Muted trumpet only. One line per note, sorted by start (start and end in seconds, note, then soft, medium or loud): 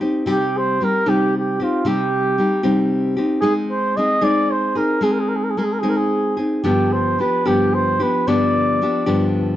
0.28 0.59 G4 medium
0.57 0.85 C5 medium
0.84 1.10 A#4 medium
1.09 1.36 G4 medium
1.38 1.65 G4 medium
1.63 1.89 F4 medium
1.88 2.93 G4 medium
3.40 3.54 G#4 medium
3.71 3.98 C5 medium
3.96 4.25 D#5 medium
4.23 4.52 D5 loud
4.51 4.78 C5 medium
4.77 5.05 A#4 medium
5.04 5.14 G#4 medium
5.12 5.21 A#4 medium
5.19 5.30 G#4 medium
5.28 5.37 A#4 medium
5.36 5.45 G#4 medium
5.44 5.52 A#4 medium
5.50 5.59 G#4 medium
5.58 5.66 A#4 medium
5.64 5.74 G#4 medium
5.73 5.81 A#4 medium
5.79 5.90 G#4 medium
5.89 5.98 A#4 medium
5.96 6.37 G#4 medium
6.63 6.94 G4 medium
6.92 7.21 C5 medium
7.20 7.48 B4 medium
7.47 7.75 G4 medium
7.74 8.04 C5 medium
8.02 8.29 B4 medium
8.28 9.34 D5 medium